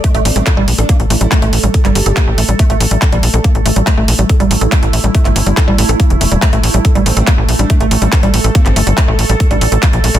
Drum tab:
HH |xxoxx-oxxxoxxxox|xxoxx-oxxxoxxxox|xxoxx-oxxxoxxxox|xxoxx-oxxxoxxxox|
CP |----x-------x---|-x--x-------x---|----x-------x---|-x--x-------x---|
BD |o---o---o---o---|o---o---o---o---|o---o---o---o---|o---o---o---o---|

HH |xxoxx-oxxxoxxxox|xxoxx-oxxxoxxxox|
CP |----x-------x---|-x--x-------x---|
BD |o---o---o---o---|o---o---o---o---|